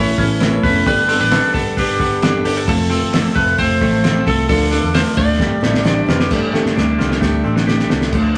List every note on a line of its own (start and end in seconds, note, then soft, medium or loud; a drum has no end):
0.00 0.11 A1 loud
0.00 0.18 A3 medium
0.00 0.86 A3 medium
0.00 0.20 B3 loud
0.00 0.17 C#4 medium
0.00 0.19 C#4 medium
0.00 0.20 C#4 medium
0.00 0.19 E4 medium
0.00 0.20 E4 medium
0.00 0.20 A4 loud
0.00 0.17 B4 medium
0.00 0.63 B4 medium
0.00 0.88 B4 medium
0.00 0.82 C#5 loud
0.18 0.57 A1 medium
0.18 0.35 B3 medium
0.18 0.35 C#4 medium
0.18 0.40 C#4 soft
0.18 0.41 E4 medium
0.18 0.35 E4 medium
0.18 0.35 A4 medium
0.18 0.41 B4 medium
0.18 kick medium
0.18 hi-hat pedal medium
0.18 open hi-hat medium
0.40 0.63 A3 medium
0.40 0.57 B3 medium
0.40 0.64 C#4 medium
0.40 0.57 C#4 medium
0.40 0.63 E4 medium
0.40 0.57 E4 medium
0.40 0.58 A4 loud
0.40 0.62 B4 loud
0.40 snare loud
0.40 hi-hat pedal medium
0.40 open hi-hat medium
0.63 0.83 F1 medium
0.63 0.80 B3 loud
0.63 0.80 C#4 medium
0.63 0.87 C#4 soft
0.63 0.87 E4 medium
0.63 0.80 E4 medium
0.63 0.80 A4 loud
0.63 0.86 B4 medium
0.63 kick loud
0.63 hi-hat pedal medium
0.63 open hi-hat medium
0.86 1.15 G1 loud
0.86 1.09 G3 medium
0.86 1.02 B3 loud
0.86 1.09 B3 medium
0.86 1.02 D4 medium
0.86 1.09 D4 loud
0.86 1.02 G4 medium
0.86 1.02 A4 loud
0.86 1.07 A4 medium
0.86 1.19 B4 loud
0.86 kick loud
0.86 hi-hat pedal medium
0.86 open hi-hat loud
1.08 1.25 B3 medium
1.08 1.30 B3 soft
1.08 1.20 C4 medium
1.08 1.25 D4 medium
1.08 1.31 D4 soft
1.08 1.25 G4 medium
1.08 1.31 A4 medium
1.08 1.25 A4 loud
1.08 hi-hat pedal medium
1.08 open hi-hat medium
1.20 1.40 A1 medium
1.20 1.76 D4 medium
1.20 1.52 B4 loud
1.31 1.54 G3 medium
1.31 1.47 B3 medium
1.31 1.54 B3 medium
1.31 1.48 D4 medium
1.31 1.55 D4 loud
1.31 1.47 G4 medium
1.31 1.52 A4 loud
1.31 1.48 B4 medium
1.31 snare loud
1.31 hi-hat pedal medium
1.31 open hi-hat loud
1.54 1.93 G1 loud
1.54 1.70 B3 medium
1.54 1.76 B3 soft
1.54 1.71 D4 medium
1.54 1.77 D4 soft
1.54 1.71 G4 medium
1.54 1.77 A4 medium
1.54 1.78 A4 medium
1.54 1.71 A4 medium
1.54 kick medium
1.54 hi-hat pedal medium
1.54 open hi-hat medium
1.76 1.99 G3 medium
1.76 1.93 B3 medium
1.76 2.00 B3 medium
1.76 1.93 D4 medium
1.76 2.00 D4 medium
1.76 1.93 G4 medium
1.76 2.42 G4 medium
1.76 1.98 A4 medium
1.76 1.93 B4 medium
1.76 kick medium
1.76 hi-hat pedal medium
1.76 open hi-hat loud
1.99 2.38 G1 medium
1.99 2.15 B3 medium
1.99 2.21 B3 soft
1.99 2.15 D4 medium
1.99 2.22 D4 medium
1.99 2.16 G4 medium
1.99 2.22 A4 medium
1.99 2.15 A4 medium
1.99 kick medium
1.99 hi-hat pedal medium
1.99 open hi-hat medium
2.22 2.45 G3 medium
2.22 2.38 B3 medium
2.22 2.45 B3 medium
2.22 2.38 D4 medium
2.22 2.45 D4 medium
2.22 2.38 G4 medium
2.22 2.38 A4 loud
2.22 2.44 A4 medium
2.22 snare loud
2.22 hi-hat pedal medium
2.22 open hi-hat medium
2.45 2.64 G1 loud
2.45 2.61 B3 loud
2.45 2.67 B3 soft
2.45 2.61 D4 medium
2.45 2.68 D4 medium
2.45 2.61 G4 medium
2.45 2.57 G4 medium
2.45 2.67 A4 medium
2.45 2.61 A4 loud
2.45 hi-hat pedal medium
2.45 open hi-hat medium
2.57 2.73 A4 medium
2.67 2.97 F1 loud
2.67 2.90 F2 medium
2.67 2.90 C3 medium
2.67 2.90 F3 medium
2.67 2.83 A3 loud
2.67 2.90 A3 medium
2.67 2.84 C4 medium
2.67 2.89 C4 medium
2.67 2.84 F4 loud
2.67 2.84 A4 loud
2.67 2.88 A4 loud
2.67 3.35 A4 loud
2.67 kick loud
2.67 hi-hat pedal medium
2.67 open hi-hat loud
2.89 3.13 F3 soft
2.89 3.06 A3 loud
2.89 3.13 A3 soft
2.89 3.06 C4 loud
2.89 3.13 C4 medium
2.89 3.06 F4 medium
2.89 3.13 A4 medium
2.89 3.06 A4 loud
2.89 hi-hat pedal medium
2.89 open hi-hat medium
3.01 3.21 G1 medium
3.13 3.36 F2 loud
3.13 3.36 C3 medium
3.13 3.36 F3 loud
3.13 3.29 A3 medium
3.13 3.35 A3 loud
3.13 3.29 C4 medium
3.13 3.35 C4 medium
3.13 3.29 F4 medium
3.13 3.30 A4 medium
3.13 3.34 A4 loud
3.13 snare loud
3.13 hi-hat pedal medium
3.13 open hi-hat loud
3.35 3.55 F1 loud
3.35 3.57 F3 soft
3.35 3.52 A3 medium
3.35 3.58 A3 medium
3.35 3.58 C4 medium
3.35 3.52 C4 medium
3.35 3.52 F4 medium
3.35 3.58 A4 medium
3.35 3.52 A4 medium
3.35 3.58 B4 medium
3.35 kick medium
3.35 hi-hat pedal medium
3.35 open hi-hat medium
3.58 3.78 F1 medium
3.58 3.81 F3 medium
3.58 3.75 A3 medium
3.58 3.81 A3 medium
3.58 3.75 C4 medium
3.58 3.81 C4 medium
3.58 3.75 F4 medium
3.58 3.79 A4 medium
3.58 4.27 C5 loud
3.58 3.75 C5 medium
3.58 kick medium
3.58 hi-hat pedal medium
3.58 open hi-hat medium
3.81 4.20 A1 medium
3.81 4.03 F3 medium
3.81 3.97 A3 medium
3.81 4.04 A3 soft
3.81 3.97 C4 medium
3.81 4.04 C4 medium
3.81 3.98 F4 medium
3.81 4.04 A4 medium
3.81 3.98 A4 medium
3.81 kick medium
3.81 hi-hat pedal medium
3.81 open hi-hat medium
4.03 4.27 F2 loud
4.03 4.27 C3 medium
4.03 4.27 F3 medium
4.03 4.20 A3 medium
4.03 4.27 A3 medium
4.03 4.20 C4 medium
4.03 4.27 C4 medium
4.03 4.20 F4 medium
4.03 4.20 A4 loud
4.03 4.25 A4 medium
4.03 snare loud
4.03 hi-hat pedal medium
4.03 open hi-hat medium
4.26 4.46 C2 medium
4.26 4.48 F3 soft
4.26 4.42 A3 medium
4.26 4.49 A3 medium
4.26 4.42 C4 medium
4.26 4.50 C4 medium
4.26 4.42 F4 medium
4.26 4.49 A4 medium
4.26 4.42 A4 medium
4.26 4.48 A4 medium
4.26 kick loud
4.26 hi-hat pedal medium
4.26 open hi-hat medium
4.49 4.78 D2 loud
4.49 4.72 D3 medium
4.49 4.72 F3 medium
4.49 4.65 A3 loud
4.49 4.72 A3 medium
4.49 4.65 D4 medium
4.49 4.72 D4 medium
4.49 4.65 F4 medium
4.49 4.70 F4 loud
4.49 4.91 A4 loud
4.49 4.65 A4 loud
4.49 kick loud
4.49 hi-hat pedal medium
4.49 open hi-hat loud
4.71 4.88 A3 loud
4.71 4.94 A3 soft
4.71 4.88 D4 loud
4.71 4.94 D4 soft
4.71 4.94 F4 medium
4.71 4.88 F4 medium
4.71 4.88 A4 loud
4.71 hi-hat pedal medium
4.71 open hi-hat medium
4.83 5.02 E2 medium
4.94 5.17 D3 medium
4.94 5.17 F3 medium
4.94 5.10 A3 medium
4.94 5.17 A3 loud
4.94 5.11 D4 medium
4.94 5.17 D4 loud
4.94 5.11 F4 medium
4.94 5.15 F4 medium
4.94 5.11 A4 medium
4.94 5.01 C5 loud
4.94 snare loud
4.94 hi-hat pedal medium
4.94 open hi-hat loud
5.17 5.36 D2 loud
5.17 5.33 A3 medium
5.17 5.38 A3 medium
5.17 5.33 D4 medium
5.17 5.39 D4 medium
5.17 5.40 F4 medium
5.17 5.33 F4 medium
5.17 6.04 D5 loud
5.17 kick loud
5.17 hi-hat pedal medium
5.17 open hi-hat medium
5.38 5.59 G1 loud
5.38 5.62 G3 medium
5.38 5.63 A3 medium
5.38 5.56 A3 medium
5.38 5.61 D4 medium
5.38 5.56 D4 medium
5.38 5.56 G4 medium
5.38 5.60 G4 medium
5.38 5.56 A4 medium
5.38 kick medium
5.38 snare medium
5.61 6.01 A1 loud
5.61 5.79 A3 medium
5.61 5.83 A3 medium
5.61 5.78 D4 medium
5.61 5.83 D4 medium
5.61 5.84 G4 medium
5.61 5.79 G4 medium
5.61 5.78 A4 medium
5.61 snare medium
5.74 snare medium
5.83 6.07 G3 loud
5.83 6.07 A3 medium
5.83 6.01 A3 loud
5.83 6.06 D4 loud
5.83 6.01 D4 loud
5.83 6.05 G4 loud
5.83 6.02 G4 loud
5.83 6.02 C5 loud
5.83 snare medium
6.06 6.27 F1 loud
6.06 6.30 A3 medium
6.06 6.25 A3 loud
6.06 6.30 D4 medium
6.06 6.25 D4 medium
6.06 6.21 F4 medium
6.06 6.30 G4 medium
6.06 6.25 G4 medium
6.06 6.25 B4 loud
6.06 snare loud
6.20 6.36 G4 medium
6.20 snare medium
6.30 6.50 G1 loud
6.30 6.53 G3 medium
6.30 6.54 A3 medium
6.30 6.53 D4 loud
6.30 6.47 D4 loud
6.30 6.47 G4 loud
6.30 6.52 G4 medium
6.30 6.47 A4 loud
6.30 kick loud
6.30 snare medium
6.30 crash medium
6.53 6.76 A3 medium
6.53 6.69 D4 loud
6.53 6.76 D4 medium
6.53 6.76 G4 medium
6.53 6.70 G4 loud
6.53 6.69 A4 loud
6.53 snare medium
6.65 6.75 G1 medium
6.65 snare medium
6.76 6.96 D2 medium
6.76 6.99 G3 medium
6.76 7.00 A3 medium
6.76 6.93 D4 medium
6.76 6.99 D4 medium
6.76 6.93 G4 medium
6.76 6.97 G4 medium
6.76 6.93 A4 medium
6.76 snare medium
6.98 7.18 C2 medium
6.98 7.21 A3 medium
6.98 7.15 D4 medium
6.98 7.21 D4 medium
6.98 7.10 F4 medium
6.98 7.22 G4 medium
6.98 7.15 G4 medium
6.98 7.15 A4 medium
6.98 snare medium
7.10 7.66 G4 medium
7.10 snare medium
7.21 7.41 D2 medium
7.21 7.45 G3 medium
7.21 7.45 A3 loud
7.21 7.38 D4 medium
7.21 7.44 D4 loud
7.21 7.38 G4 medium
7.21 7.43 G4 loud
7.21 7.38 A4 medium
7.21 kick medium
7.21 snare medium
7.43 7.83 A1 medium
7.43 7.67 A3 soft
7.43 7.56 C4 medium
7.43 7.60 D4 medium
7.43 7.68 D4 medium
7.43 7.60 G4 medium
7.43 7.67 G4 medium
7.43 7.60 A4 medium
7.56 8.17 D4 soft
7.56 snare medium
7.66 7.90 G3 medium
7.66 7.91 A3 medium
7.66 7.83 D4 loud
7.66 7.90 D4 medium
7.66 7.83 G4 loud
7.66 7.89 G4 medium
7.66 7.83 A4 loud
7.66 snare medium
7.79 snare medium
7.89 8.10 C2 medium
7.89 8.13 A3 soft
7.89 8.06 D4 medium
7.89 8.13 D4 soft
7.89 8.06 G4 medium
7.89 8.13 G4 medium
7.89 8.06 A4 loud
7.89 snare medium
8.01 snare medium
8.12 8.32 D2 loud
8.12 8.36 D3 medium
8.12 8.36 F3 medium
8.12 8.36 A3 medium
8.12 8.35 D4 medium
8.12 8.33 F4 medium
8.12 kick loud
8.12 crash medium
8.35 8.38 F4 soft